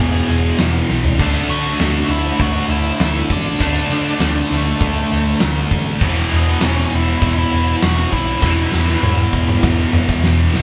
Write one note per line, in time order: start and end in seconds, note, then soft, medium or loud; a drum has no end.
0.00 0.19 E1 loud
0.00 1.18 E2 medium
0.00 1.17 B2 medium
0.00 1.19 E3 medium
0.00 0.57 G#4 loud
0.28 0.49 E1 loud
0.28 open hi-hat medium
0.59 0.80 E1 loud
0.59 snare loud
0.59 open hi-hat medium
0.89 1.10 B1 medium
0.89 snare medium
1.04 floor tom loud
1.18 1.40 D2 medium
1.18 3.58 D3 medium
1.18 3.59 A3 medium
1.18 3.59 D4 medium
1.18 kick loud
1.18 open hi-hat medium
1.18 crash loud
1.49 1.69 D3 loud
1.49 2.11 F#4 loud
1.49 snare soft
1.49 open hi-hat medium
1.80 2.00 D2 loud
1.80 snare loud
1.80 open hi-hat loud
2.08 2.29 D2 medium
2.08 2.41 E4 medium
2.08 open hi-hat medium
2.39 2.60 D2 loud
2.39 2.70 F#4 loud
2.39 kick loud
2.39 open hi-hat medium
2.69 2.90 D2 loud
2.69 3.32 E4 loud
2.69 open hi-hat medium
3.00 3.20 D2 loud
3.00 snare loud
3.00 open hi-hat medium
3.30 3.51 A1 medium
3.30 4.56 D4 loud
3.30 kick medium
3.30 open hi-hat medium
3.60 3.81 D2 loud
3.60 5.99 D3 medium
3.60 6.00 A3 medium
3.60 6.01 D4 loud
3.60 kick loud
3.60 open hi-hat medium
3.90 4.11 D3 medium
3.90 snare soft
3.90 open hi-hat medium
4.20 4.40 D2 medium
4.20 snare loud
4.20 open hi-hat medium
4.50 4.71 D2 medium
4.50 5.39 A3 medium
4.50 open hi-hat medium
4.81 5.01 D2 loud
4.81 kick loud
4.81 open hi-hat loud
5.11 5.32 D2 loud
5.11 open hi-hat medium
5.40 5.62 D2 loud
5.40 snare loud
5.40 open hi-hat medium
5.70 5.92 A1 medium
5.70 kick medium
5.70 open hi-hat medium
5.87 snare soft
6.00 6.22 E1 loud
6.00 8.39 E2 loud
6.00 8.41 B2 loud
6.00 8.42 E3 loud
6.00 kick loud
6.00 crash loud
6.32 6.53 E2 loud
6.32 open hi-hat medium
6.37 6.65 B3 medium
6.61 6.83 E1 medium
6.61 snare loud
6.61 open hi-hat medium
6.65 6.85 C#4 loud
6.86 6.92 C#4 medium
6.91 7.13 E1 medium
6.91 7.36 E4 loud
6.91 open hi-hat medium
7.22 7.43 E1 medium
7.22 kick loud
7.22 open hi-hat medium
7.38 7.80 E4 loud
7.52 7.73 E1 loud
7.52 open hi-hat medium
7.82 8.04 E1 loud
7.82 8.13 F#4 medium
7.82 snare loud
7.82 open hi-hat medium
8.12 8.33 B1 medium
8.12 9.90 E4 loud
8.12 kick loud
8.12 open hi-hat medium
8.28 snare soft
8.41 8.63 E1 loud
8.41 10.62 E2 medium
8.41 10.62 B2 loud
8.41 10.62 E3 loud
8.41 kick loud
8.41 snare medium
8.72 8.94 E2 loud
8.72 snare medium
8.88 snare medium
9.02 9.24 E1 medium
9.02 mid tom medium
9.33 9.54 E1 medium
9.33 kick medium
9.48 mid tom medium
9.63 9.84 E1 loud
9.63 kick loud
9.63 snare loud
9.93 10.15 E1 loud
9.93 mid tom loud
10.09 kick medium
10.24 10.46 E1 loud
10.24 snare loud
10.54 10.62 B1 medium
10.54 snare loud